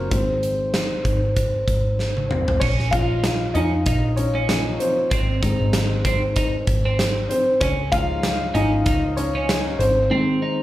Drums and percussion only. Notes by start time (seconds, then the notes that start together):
0.11 kick, closed hi-hat
0.43 closed hi-hat
0.74 snare, closed hi-hat
1.05 kick, closed hi-hat
1.36 kick, closed hi-hat
1.68 kick, closed hi-hat
1.99 snare
2.17 high tom
2.31 mid tom
2.48 floor tom
2.62 kick, crash
2.79 snare
2.93 kick, closed hi-hat
3.24 snare, closed hi-hat
3.55 closed hi-hat
3.86 kick, closed hi-hat
4.17 closed hi-hat
4.49 snare, closed hi-hat
4.80 closed hi-hat
5.11 kick, closed hi-hat
5.43 kick, closed hi-hat
5.73 snare, closed hi-hat
6.05 kick, closed hi-hat
6.36 kick, closed hi-hat
6.67 kick, closed hi-hat
6.99 snare, closed hi-hat
7.31 closed hi-hat
7.61 kick, closed hi-hat
7.92 kick, closed hi-hat
8.23 snare, closed hi-hat
8.55 closed hi-hat
8.86 kick, closed hi-hat
9.17 closed hi-hat
9.49 snare, closed hi-hat
9.80 closed hi-hat